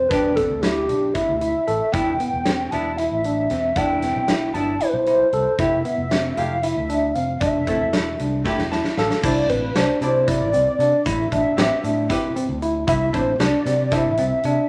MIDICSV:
0, 0, Header, 1, 6, 480
1, 0, Start_track
1, 0, Tempo, 521286
1, 105, Time_signature, 7, 3, 24, 8
1, 13525, End_track
2, 0, Start_track
2, 0, Title_t, "Analog synth lead"
2, 0, Program_c, 0, 81
2, 80, Note_on_c, 0, 71, 94
2, 329, Note_on_c, 0, 69, 95
2, 343, Note_off_c, 0, 71, 0
2, 567, Note_on_c, 0, 67, 92
2, 580, Note_off_c, 0, 69, 0
2, 1049, Note_on_c, 0, 76, 97
2, 1063, Note_off_c, 0, 67, 0
2, 1771, Note_on_c, 0, 79, 105
2, 1785, Note_off_c, 0, 76, 0
2, 2496, Note_on_c, 0, 81, 91
2, 2510, Note_off_c, 0, 79, 0
2, 2737, Note_on_c, 0, 76, 101
2, 2751, Note_off_c, 0, 81, 0
2, 3457, Note_on_c, 0, 79, 108
2, 3471, Note_off_c, 0, 76, 0
2, 4176, Note_off_c, 0, 79, 0
2, 4181, Note_on_c, 0, 81, 94
2, 4422, Note_on_c, 0, 72, 82
2, 4435, Note_off_c, 0, 81, 0
2, 4505, Note_on_c, 0, 71, 64
2, 4518, Note_off_c, 0, 72, 0
2, 4546, Note_on_c, 0, 72, 101
2, 4560, Note_off_c, 0, 71, 0
2, 5149, Note_on_c, 0, 76, 102
2, 5163, Note_off_c, 0, 72, 0
2, 5871, Note_on_c, 0, 77, 90
2, 5885, Note_off_c, 0, 76, 0
2, 6100, Note_on_c, 0, 76, 98
2, 6114, Note_off_c, 0, 77, 0
2, 6581, Note_on_c, 0, 77, 83
2, 6594, Note_off_c, 0, 76, 0
2, 6812, Note_off_c, 0, 77, 0
2, 6818, Note_on_c, 0, 76, 100
2, 7985, Note_off_c, 0, 76, 0
2, 8513, Note_on_c, 0, 74, 89
2, 8742, Note_on_c, 0, 71, 89
2, 8756, Note_off_c, 0, 74, 0
2, 8982, Note_on_c, 0, 72, 86
2, 8996, Note_off_c, 0, 71, 0
2, 9459, Note_off_c, 0, 72, 0
2, 9465, Note_on_c, 0, 74, 100
2, 10179, Note_on_c, 0, 76, 112
2, 10192, Note_off_c, 0, 74, 0
2, 11619, Note_off_c, 0, 76, 0
2, 11863, Note_on_c, 0, 76, 100
2, 12107, Note_on_c, 0, 72, 87
2, 12120, Note_off_c, 0, 76, 0
2, 12345, Note_on_c, 0, 74, 96
2, 12358, Note_off_c, 0, 72, 0
2, 12819, Note_on_c, 0, 76, 96
2, 12833, Note_off_c, 0, 74, 0
2, 13525, Note_off_c, 0, 76, 0
2, 13525, End_track
3, 0, Start_track
3, 0, Title_t, "Hollow-body jazz guitar"
3, 0, Program_c, 1, 26
3, 102, Note_on_c, 1, 59, 59
3, 113, Note_on_c, 1, 62, 53
3, 122, Note_on_c, 1, 67, 65
3, 777, Note_off_c, 1, 59, 0
3, 782, Note_off_c, 1, 62, 0
3, 787, Note_off_c, 1, 67, 0
3, 1770, Note_on_c, 1, 59, 58
3, 1780, Note_on_c, 1, 62, 50
3, 1791, Note_on_c, 1, 64, 71
3, 1947, Note_off_c, 1, 59, 0
3, 1952, Note_off_c, 1, 62, 0
3, 1958, Note_off_c, 1, 64, 0
3, 2505, Note_on_c, 1, 59, 63
3, 2515, Note_on_c, 1, 62, 55
3, 2522, Note_on_c, 1, 64, 66
3, 2675, Note_off_c, 1, 59, 0
3, 2680, Note_off_c, 1, 62, 0
3, 2683, Note_off_c, 1, 64, 0
3, 3460, Note_on_c, 1, 59, 56
3, 3467, Note_on_c, 1, 62, 50
3, 3479, Note_on_c, 1, 64, 65
3, 4137, Note_off_c, 1, 59, 0
3, 4140, Note_off_c, 1, 62, 0
3, 4146, Note_off_c, 1, 64, 0
3, 4180, Note_on_c, 1, 59, 51
3, 4190, Note_on_c, 1, 62, 50
3, 4200, Note_on_c, 1, 64, 61
3, 4352, Note_off_c, 1, 59, 0
3, 4357, Note_off_c, 1, 62, 0
3, 4363, Note_off_c, 1, 64, 0
3, 5142, Note_on_c, 1, 57, 55
3, 5154, Note_on_c, 1, 64, 52
3, 5160, Note_on_c, 1, 67, 59
3, 5313, Note_off_c, 1, 57, 0
3, 5319, Note_off_c, 1, 64, 0
3, 5322, Note_off_c, 1, 67, 0
3, 5865, Note_on_c, 1, 57, 56
3, 5870, Note_on_c, 1, 64, 57
3, 5881, Note_on_c, 1, 67, 62
3, 6035, Note_off_c, 1, 57, 0
3, 6037, Note_off_c, 1, 64, 0
3, 6043, Note_off_c, 1, 67, 0
3, 7061, Note_on_c, 1, 57, 59
3, 7069, Note_on_c, 1, 64, 50
3, 7079, Note_on_c, 1, 69, 61
3, 7736, Note_off_c, 1, 57, 0
3, 7740, Note_off_c, 1, 64, 0
3, 7745, Note_off_c, 1, 69, 0
3, 7775, Note_on_c, 1, 57, 67
3, 7782, Note_on_c, 1, 64, 62
3, 7796, Note_on_c, 1, 67, 73
3, 7949, Note_off_c, 1, 57, 0
3, 7952, Note_off_c, 1, 64, 0
3, 7959, Note_off_c, 1, 67, 0
3, 8026, Note_on_c, 1, 81, 57
3, 8249, Note_off_c, 1, 81, 0
3, 8268, Note_on_c, 1, 77, 51
3, 8490, Note_off_c, 1, 77, 0
3, 8498, Note_on_c, 1, 62, 67
3, 8507, Note_on_c, 1, 64, 60
3, 8514, Note_on_c, 1, 72, 74
3, 8838, Note_off_c, 1, 62, 0
3, 8842, Note_off_c, 1, 64, 0
3, 8846, Note_off_c, 1, 72, 0
3, 9223, Note_on_c, 1, 62, 60
3, 9233, Note_on_c, 1, 64, 51
3, 9240, Note_on_c, 1, 74, 61
3, 9559, Note_off_c, 1, 62, 0
3, 9564, Note_off_c, 1, 64, 0
3, 9568, Note_off_c, 1, 74, 0
3, 10653, Note_on_c, 1, 60, 57
3, 10660, Note_on_c, 1, 67, 54
3, 10669, Note_on_c, 1, 71, 72
3, 10994, Note_off_c, 1, 60, 0
3, 10997, Note_off_c, 1, 67, 0
3, 11001, Note_off_c, 1, 71, 0
3, 11136, Note_on_c, 1, 60, 67
3, 11148, Note_on_c, 1, 67, 67
3, 11157, Note_on_c, 1, 71, 88
3, 11475, Note_off_c, 1, 60, 0
3, 11481, Note_off_c, 1, 67, 0
3, 11485, Note_off_c, 1, 71, 0
3, 12090, Note_on_c, 1, 62, 65
3, 12102, Note_on_c, 1, 64, 60
3, 12106, Note_on_c, 1, 72, 74
3, 12264, Note_off_c, 1, 62, 0
3, 12270, Note_off_c, 1, 64, 0
3, 12272, Note_off_c, 1, 72, 0
3, 12813, Note_on_c, 1, 62, 61
3, 12821, Note_on_c, 1, 64, 53
3, 12832, Note_on_c, 1, 72, 62
3, 12985, Note_off_c, 1, 62, 0
3, 12989, Note_off_c, 1, 64, 0
3, 12994, Note_off_c, 1, 72, 0
3, 13525, End_track
4, 0, Start_track
4, 0, Title_t, "Tine electric piano"
4, 0, Program_c, 2, 4
4, 97, Note_on_c, 2, 62, 76
4, 292, Note_off_c, 2, 62, 0
4, 346, Note_on_c, 2, 60, 58
4, 538, Note_off_c, 2, 60, 0
4, 586, Note_on_c, 2, 64, 69
4, 778, Note_off_c, 2, 64, 0
4, 825, Note_on_c, 2, 62, 56
4, 1017, Note_off_c, 2, 62, 0
4, 1065, Note_on_c, 2, 64, 67
4, 1258, Note_off_c, 2, 64, 0
4, 1305, Note_on_c, 2, 64, 62
4, 1497, Note_off_c, 2, 64, 0
4, 1543, Note_on_c, 2, 69, 69
4, 1736, Note_off_c, 2, 69, 0
4, 1788, Note_on_c, 2, 64, 69
4, 1980, Note_off_c, 2, 64, 0
4, 2028, Note_on_c, 2, 59, 62
4, 2220, Note_off_c, 2, 59, 0
4, 2273, Note_on_c, 2, 60, 75
4, 2463, Note_off_c, 2, 60, 0
4, 2515, Note_on_c, 2, 64, 62
4, 2704, Note_off_c, 2, 64, 0
4, 2758, Note_on_c, 2, 64, 67
4, 2946, Note_off_c, 2, 64, 0
4, 2995, Note_on_c, 2, 62, 63
4, 3184, Note_off_c, 2, 62, 0
4, 3234, Note_on_c, 2, 60, 68
4, 3424, Note_off_c, 2, 60, 0
4, 3480, Note_on_c, 2, 62, 71
4, 3667, Note_off_c, 2, 62, 0
4, 3718, Note_on_c, 2, 60, 59
4, 3906, Note_off_c, 2, 60, 0
4, 3953, Note_on_c, 2, 64, 71
4, 4143, Note_off_c, 2, 64, 0
4, 4194, Note_on_c, 2, 62, 58
4, 4383, Note_off_c, 2, 62, 0
4, 4438, Note_on_c, 2, 64, 69
4, 4626, Note_off_c, 2, 64, 0
4, 4675, Note_on_c, 2, 64, 70
4, 4864, Note_off_c, 2, 64, 0
4, 4913, Note_on_c, 2, 69, 70
4, 5103, Note_off_c, 2, 69, 0
4, 5153, Note_on_c, 2, 64, 76
4, 5343, Note_off_c, 2, 64, 0
4, 5388, Note_on_c, 2, 59, 62
4, 5580, Note_off_c, 2, 59, 0
4, 5633, Note_on_c, 2, 60, 72
4, 5823, Note_off_c, 2, 60, 0
4, 5869, Note_on_c, 2, 64, 60
4, 6061, Note_off_c, 2, 64, 0
4, 6112, Note_on_c, 2, 64, 71
4, 6302, Note_off_c, 2, 64, 0
4, 6350, Note_on_c, 2, 62, 67
4, 6541, Note_off_c, 2, 62, 0
4, 6591, Note_on_c, 2, 60, 67
4, 6781, Note_off_c, 2, 60, 0
4, 6836, Note_on_c, 2, 62, 73
4, 7024, Note_off_c, 2, 62, 0
4, 7074, Note_on_c, 2, 60, 65
4, 7263, Note_off_c, 2, 60, 0
4, 7313, Note_on_c, 2, 64, 67
4, 7502, Note_off_c, 2, 64, 0
4, 7556, Note_on_c, 2, 62, 52
4, 7744, Note_off_c, 2, 62, 0
4, 7795, Note_on_c, 2, 64, 71
4, 7983, Note_off_c, 2, 64, 0
4, 8036, Note_on_c, 2, 64, 66
4, 8223, Note_off_c, 2, 64, 0
4, 8276, Note_on_c, 2, 69, 72
4, 8464, Note_off_c, 2, 69, 0
4, 8516, Note_on_c, 2, 64, 73
4, 8703, Note_off_c, 2, 64, 0
4, 8751, Note_on_c, 2, 60, 63
4, 8940, Note_off_c, 2, 60, 0
4, 8986, Note_on_c, 2, 62, 83
4, 9177, Note_off_c, 2, 62, 0
4, 9224, Note_on_c, 2, 60, 53
4, 9415, Note_off_c, 2, 60, 0
4, 9463, Note_on_c, 2, 64, 80
4, 9655, Note_off_c, 2, 64, 0
4, 9699, Note_on_c, 2, 60, 71
4, 9892, Note_off_c, 2, 60, 0
4, 9946, Note_on_c, 2, 62, 72
4, 10136, Note_off_c, 2, 62, 0
4, 10183, Note_on_c, 2, 64, 86
4, 10375, Note_off_c, 2, 64, 0
4, 10427, Note_on_c, 2, 62, 73
4, 10617, Note_off_c, 2, 62, 0
4, 10673, Note_on_c, 2, 60, 80
4, 10860, Note_off_c, 2, 60, 0
4, 10906, Note_on_c, 2, 62, 62
4, 11096, Note_off_c, 2, 62, 0
4, 11140, Note_on_c, 2, 64, 71
4, 11332, Note_off_c, 2, 64, 0
4, 11383, Note_on_c, 2, 60, 72
4, 11574, Note_off_c, 2, 60, 0
4, 11625, Note_on_c, 2, 64, 75
4, 11815, Note_off_c, 2, 64, 0
4, 11855, Note_on_c, 2, 64, 82
4, 12049, Note_off_c, 2, 64, 0
4, 12099, Note_on_c, 2, 60, 62
4, 12291, Note_off_c, 2, 60, 0
4, 12341, Note_on_c, 2, 62, 78
4, 12532, Note_off_c, 2, 62, 0
4, 12586, Note_on_c, 2, 60, 68
4, 12775, Note_off_c, 2, 60, 0
4, 12832, Note_on_c, 2, 64, 85
4, 13019, Note_off_c, 2, 64, 0
4, 13063, Note_on_c, 2, 60, 71
4, 13254, Note_off_c, 2, 60, 0
4, 13307, Note_on_c, 2, 62, 75
4, 13496, Note_off_c, 2, 62, 0
4, 13525, End_track
5, 0, Start_track
5, 0, Title_t, "Fingered electric bass"
5, 0, Program_c, 3, 33
5, 97, Note_on_c, 3, 28, 86
5, 420, Note_off_c, 3, 28, 0
5, 462, Note_on_c, 3, 38, 71
5, 782, Note_off_c, 3, 38, 0
5, 825, Note_on_c, 3, 35, 76
5, 1038, Note_off_c, 3, 35, 0
5, 1185, Note_on_c, 3, 38, 64
5, 1398, Note_off_c, 3, 38, 0
5, 1548, Note_on_c, 3, 33, 70
5, 1654, Note_off_c, 3, 33, 0
5, 1780, Note_on_c, 3, 28, 94
5, 1996, Note_off_c, 3, 28, 0
5, 2148, Note_on_c, 3, 28, 67
5, 2467, Note_off_c, 3, 28, 0
5, 2509, Note_on_c, 3, 28, 72
5, 2828, Note_off_c, 3, 28, 0
5, 2867, Note_on_c, 3, 33, 72
5, 3186, Note_off_c, 3, 33, 0
5, 3227, Note_on_c, 3, 28, 78
5, 3440, Note_off_c, 3, 28, 0
5, 3459, Note_on_c, 3, 28, 84
5, 3782, Note_off_c, 3, 28, 0
5, 3829, Note_on_c, 3, 35, 79
5, 4147, Note_off_c, 3, 35, 0
5, 4183, Note_on_c, 3, 31, 76
5, 4398, Note_off_c, 3, 31, 0
5, 4542, Note_on_c, 3, 35, 73
5, 4757, Note_off_c, 3, 35, 0
5, 4905, Note_on_c, 3, 36, 79
5, 5013, Note_off_c, 3, 36, 0
5, 5142, Note_on_c, 3, 29, 90
5, 5357, Note_off_c, 3, 29, 0
5, 5504, Note_on_c, 3, 29, 81
5, 5825, Note_off_c, 3, 29, 0
5, 5864, Note_on_c, 3, 29, 71
5, 6184, Note_off_c, 3, 29, 0
5, 6227, Note_on_c, 3, 38, 77
5, 6546, Note_off_c, 3, 38, 0
5, 6589, Note_on_c, 3, 29, 75
5, 6801, Note_off_c, 3, 29, 0
5, 6819, Note_on_c, 3, 29, 83
5, 7141, Note_off_c, 3, 29, 0
5, 7187, Note_on_c, 3, 28, 76
5, 7506, Note_off_c, 3, 28, 0
5, 7549, Note_on_c, 3, 36, 80
5, 7760, Note_off_c, 3, 36, 0
5, 7899, Note_on_c, 3, 28, 73
5, 8115, Note_off_c, 3, 28, 0
5, 8263, Note_on_c, 3, 33, 79
5, 8370, Note_off_c, 3, 33, 0
5, 8502, Note_on_c, 3, 36, 98
5, 8716, Note_off_c, 3, 36, 0
5, 8743, Note_on_c, 3, 33, 70
5, 8956, Note_off_c, 3, 33, 0
5, 8977, Note_on_c, 3, 36, 87
5, 9087, Note_off_c, 3, 36, 0
5, 9215, Note_on_c, 3, 48, 80
5, 9581, Note_on_c, 3, 33, 77
5, 9595, Note_off_c, 3, 48, 0
5, 9689, Note_off_c, 3, 33, 0
5, 9699, Note_on_c, 3, 36, 81
5, 9807, Note_off_c, 3, 36, 0
5, 9931, Note_on_c, 3, 48, 80
5, 10043, Note_off_c, 3, 48, 0
5, 10179, Note_on_c, 3, 33, 92
5, 10393, Note_off_c, 3, 33, 0
5, 10419, Note_on_c, 3, 33, 78
5, 10527, Note_off_c, 3, 33, 0
5, 10658, Note_on_c, 3, 33, 90
5, 10766, Note_off_c, 3, 33, 0
5, 10897, Note_on_c, 3, 45, 80
5, 11112, Note_off_c, 3, 45, 0
5, 11498, Note_on_c, 3, 38, 71
5, 11818, Note_off_c, 3, 38, 0
5, 11856, Note_on_c, 3, 36, 103
5, 12070, Note_off_c, 3, 36, 0
5, 12095, Note_on_c, 3, 33, 74
5, 12310, Note_off_c, 3, 33, 0
5, 12331, Note_on_c, 3, 36, 83
5, 12441, Note_off_c, 3, 36, 0
5, 12573, Note_on_c, 3, 48, 92
5, 12937, Note_on_c, 3, 33, 75
5, 12951, Note_off_c, 3, 48, 0
5, 13045, Note_off_c, 3, 33, 0
5, 13058, Note_on_c, 3, 36, 75
5, 13166, Note_off_c, 3, 36, 0
5, 13297, Note_on_c, 3, 48, 82
5, 13405, Note_off_c, 3, 48, 0
5, 13525, End_track
6, 0, Start_track
6, 0, Title_t, "Drums"
6, 100, Note_on_c, 9, 36, 92
6, 101, Note_on_c, 9, 42, 70
6, 192, Note_off_c, 9, 36, 0
6, 193, Note_off_c, 9, 42, 0
6, 340, Note_on_c, 9, 36, 70
6, 341, Note_on_c, 9, 42, 51
6, 432, Note_off_c, 9, 36, 0
6, 433, Note_off_c, 9, 42, 0
6, 579, Note_on_c, 9, 38, 88
6, 579, Note_on_c, 9, 42, 65
6, 671, Note_off_c, 9, 38, 0
6, 671, Note_off_c, 9, 42, 0
6, 820, Note_on_c, 9, 42, 55
6, 912, Note_off_c, 9, 42, 0
6, 1056, Note_on_c, 9, 42, 66
6, 1060, Note_on_c, 9, 36, 78
6, 1148, Note_off_c, 9, 42, 0
6, 1152, Note_off_c, 9, 36, 0
6, 1299, Note_on_c, 9, 42, 51
6, 1391, Note_off_c, 9, 42, 0
6, 1543, Note_on_c, 9, 42, 44
6, 1635, Note_off_c, 9, 42, 0
6, 1782, Note_on_c, 9, 42, 70
6, 1783, Note_on_c, 9, 36, 90
6, 1874, Note_off_c, 9, 42, 0
6, 1875, Note_off_c, 9, 36, 0
6, 2023, Note_on_c, 9, 42, 55
6, 2116, Note_off_c, 9, 42, 0
6, 2260, Note_on_c, 9, 38, 85
6, 2260, Note_on_c, 9, 42, 70
6, 2353, Note_off_c, 9, 38, 0
6, 2353, Note_off_c, 9, 42, 0
6, 2504, Note_on_c, 9, 42, 52
6, 2596, Note_off_c, 9, 42, 0
6, 2745, Note_on_c, 9, 42, 58
6, 2837, Note_off_c, 9, 42, 0
6, 2984, Note_on_c, 9, 42, 46
6, 3076, Note_off_c, 9, 42, 0
6, 3220, Note_on_c, 9, 38, 25
6, 3220, Note_on_c, 9, 42, 46
6, 3312, Note_off_c, 9, 38, 0
6, 3312, Note_off_c, 9, 42, 0
6, 3459, Note_on_c, 9, 42, 67
6, 3463, Note_on_c, 9, 36, 84
6, 3551, Note_off_c, 9, 42, 0
6, 3555, Note_off_c, 9, 36, 0
6, 3703, Note_on_c, 9, 38, 29
6, 3703, Note_on_c, 9, 42, 49
6, 3795, Note_off_c, 9, 38, 0
6, 3795, Note_off_c, 9, 42, 0
6, 3942, Note_on_c, 9, 38, 94
6, 3942, Note_on_c, 9, 42, 71
6, 4034, Note_off_c, 9, 38, 0
6, 4034, Note_off_c, 9, 42, 0
6, 4184, Note_on_c, 9, 42, 53
6, 4276, Note_off_c, 9, 42, 0
6, 4423, Note_on_c, 9, 42, 65
6, 4515, Note_off_c, 9, 42, 0
6, 4662, Note_on_c, 9, 42, 49
6, 4754, Note_off_c, 9, 42, 0
6, 4903, Note_on_c, 9, 42, 46
6, 4995, Note_off_c, 9, 42, 0
6, 5144, Note_on_c, 9, 42, 73
6, 5145, Note_on_c, 9, 36, 98
6, 5236, Note_off_c, 9, 42, 0
6, 5237, Note_off_c, 9, 36, 0
6, 5385, Note_on_c, 9, 42, 53
6, 5477, Note_off_c, 9, 42, 0
6, 5628, Note_on_c, 9, 38, 85
6, 5628, Note_on_c, 9, 42, 63
6, 5720, Note_off_c, 9, 38, 0
6, 5720, Note_off_c, 9, 42, 0
6, 5867, Note_on_c, 9, 42, 56
6, 5959, Note_off_c, 9, 42, 0
6, 6105, Note_on_c, 9, 42, 73
6, 6197, Note_off_c, 9, 42, 0
6, 6349, Note_on_c, 9, 42, 57
6, 6441, Note_off_c, 9, 42, 0
6, 6586, Note_on_c, 9, 42, 50
6, 6678, Note_off_c, 9, 42, 0
6, 6822, Note_on_c, 9, 42, 71
6, 6824, Note_on_c, 9, 36, 96
6, 6914, Note_off_c, 9, 42, 0
6, 6916, Note_off_c, 9, 36, 0
6, 7062, Note_on_c, 9, 42, 55
6, 7065, Note_on_c, 9, 36, 69
6, 7154, Note_off_c, 9, 42, 0
6, 7157, Note_off_c, 9, 36, 0
6, 7304, Note_on_c, 9, 38, 84
6, 7304, Note_on_c, 9, 42, 70
6, 7396, Note_off_c, 9, 38, 0
6, 7396, Note_off_c, 9, 42, 0
6, 7544, Note_on_c, 9, 42, 52
6, 7636, Note_off_c, 9, 42, 0
6, 7784, Note_on_c, 9, 38, 47
6, 7786, Note_on_c, 9, 36, 81
6, 7876, Note_off_c, 9, 38, 0
6, 7878, Note_off_c, 9, 36, 0
6, 7906, Note_on_c, 9, 38, 51
6, 7998, Note_off_c, 9, 38, 0
6, 8028, Note_on_c, 9, 38, 52
6, 8120, Note_off_c, 9, 38, 0
6, 8144, Note_on_c, 9, 38, 56
6, 8236, Note_off_c, 9, 38, 0
6, 8264, Note_on_c, 9, 38, 66
6, 8356, Note_off_c, 9, 38, 0
6, 8383, Note_on_c, 9, 38, 66
6, 8475, Note_off_c, 9, 38, 0
6, 8503, Note_on_c, 9, 49, 80
6, 8504, Note_on_c, 9, 36, 107
6, 8512, Note_on_c, 9, 82, 54
6, 8595, Note_off_c, 9, 49, 0
6, 8596, Note_off_c, 9, 36, 0
6, 8604, Note_off_c, 9, 82, 0
6, 8745, Note_on_c, 9, 36, 69
6, 8747, Note_on_c, 9, 42, 58
6, 8837, Note_off_c, 9, 36, 0
6, 8839, Note_off_c, 9, 42, 0
6, 8984, Note_on_c, 9, 38, 105
6, 8984, Note_on_c, 9, 42, 75
6, 9076, Note_off_c, 9, 38, 0
6, 9076, Note_off_c, 9, 42, 0
6, 9223, Note_on_c, 9, 42, 60
6, 9227, Note_on_c, 9, 82, 41
6, 9315, Note_off_c, 9, 42, 0
6, 9319, Note_off_c, 9, 82, 0
6, 9465, Note_on_c, 9, 36, 91
6, 9465, Note_on_c, 9, 42, 82
6, 9557, Note_off_c, 9, 36, 0
6, 9557, Note_off_c, 9, 42, 0
6, 9701, Note_on_c, 9, 82, 50
6, 9703, Note_on_c, 9, 42, 56
6, 9793, Note_off_c, 9, 82, 0
6, 9795, Note_off_c, 9, 42, 0
6, 9943, Note_on_c, 9, 42, 56
6, 9947, Note_on_c, 9, 82, 21
6, 10035, Note_off_c, 9, 42, 0
6, 10039, Note_off_c, 9, 82, 0
6, 10184, Note_on_c, 9, 36, 97
6, 10187, Note_on_c, 9, 42, 83
6, 10189, Note_on_c, 9, 82, 54
6, 10276, Note_off_c, 9, 36, 0
6, 10279, Note_off_c, 9, 42, 0
6, 10281, Note_off_c, 9, 82, 0
6, 10424, Note_on_c, 9, 36, 71
6, 10428, Note_on_c, 9, 42, 58
6, 10516, Note_off_c, 9, 36, 0
6, 10520, Note_off_c, 9, 42, 0
6, 10664, Note_on_c, 9, 38, 106
6, 10664, Note_on_c, 9, 42, 76
6, 10756, Note_off_c, 9, 38, 0
6, 10756, Note_off_c, 9, 42, 0
6, 10904, Note_on_c, 9, 42, 55
6, 10907, Note_on_c, 9, 82, 42
6, 10997, Note_off_c, 9, 42, 0
6, 10999, Note_off_c, 9, 82, 0
6, 11141, Note_on_c, 9, 36, 87
6, 11145, Note_on_c, 9, 42, 73
6, 11233, Note_off_c, 9, 36, 0
6, 11237, Note_off_c, 9, 42, 0
6, 11383, Note_on_c, 9, 42, 55
6, 11389, Note_on_c, 9, 82, 52
6, 11475, Note_off_c, 9, 42, 0
6, 11481, Note_off_c, 9, 82, 0
6, 11621, Note_on_c, 9, 42, 45
6, 11713, Note_off_c, 9, 42, 0
6, 11855, Note_on_c, 9, 42, 74
6, 11858, Note_on_c, 9, 36, 102
6, 11864, Note_on_c, 9, 82, 59
6, 11947, Note_off_c, 9, 42, 0
6, 11950, Note_off_c, 9, 36, 0
6, 11956, Note_off_c, 9, 82, 0
6, 12099, Note_on_c, 9, 36, 75
6, 12099, Note_on_c, 9, 42, 53
6, 12191, Note_off_c, 9, 36, 0
6, 12191, Note_off_c, 9, 42, 0
6, 12339, Note_on_c, 9, 38, 99
6, 12339, Note_on_c, 9, 42, 77
6, 12431, Note_off_c, 9, 38, 0
6, 12431, Note_off_c, 9, 42, 0
6, 12580, Note_on_c, 9, 38, 33
6, 12580, Note_on_c, 9, 42, 60
6, 12586, Note_on_c, 9, 82, 43
6, 12672, Note_off_c, 9, 38, 0
6, 12672, Note_off_c, 9, 42, 0
6, 12678, Note_off_c, 9, 82, 0
6, 12813, Note_on_c, 9, 38, 30
6, 12813, Note_on_c, 9, 42, 75
6, 12816, Note_on_c, 9, 36, 93
6, 12905, Note_off_c, 9, 38, 0
6, 12905, Note_off_c, 9, 42, 0
6, 12908, Note_off_c, 9, 36, 0
6, 13051, Note_on_c, 9, 42, 61
6, 13066, Note_on_c, 9, 82, 43
6, 13143, Note_off_c, 9, 42, 0
6, 13158, Note_off_c, 9, 82, 0
6, 13290, Note_on_c, 9, 42, 57
6, 13310, Note_on_c, 9, 82, 18
6, 13383, Note_off_c, 9, 42, 0
6, 13402, Note_off_c, 9, 82, 0
6, 13525, End_track
0, 0, End_of_file